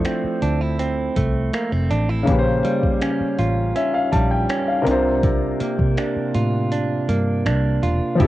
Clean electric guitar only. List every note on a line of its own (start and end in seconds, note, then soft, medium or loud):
0.00 2.67 F3 medium
0.00 1.15 A3 medium
0.05 0.78 C4 medium
0.42 0.61 D4 medium
0.61 1.90 E4 medium
0.79 1.53 C4 medium
1.16 2.35 A3 medium
1.53 1.72 A#3 medium
1.72 2.35 C4 soft
1.90 2.09 D4 medium
2.09 2.35 E4 medium
2.64 4.12 G3 medium
3.02 3.74 C#4 medium
3.39 6.34 F4 medium
3.76 4.49 C#4 medium
4.13 5.60 G3 medium
4.50 4.94 C#4 medium
4.87 5.23 C3 medium
5.24 8.20 C3 medium
5.61 7.08 A#3 medium
5.98 6.71 D4 medium
6.35 7.83 F4 medium
6.72 7.45 D4 medium
7.09 8.27 A#3 medium
7.46 8.27 D4 medium
7.83 8.20 F4 medium
8.20 8.27 F3 medium
8.20 8.27 G4 medium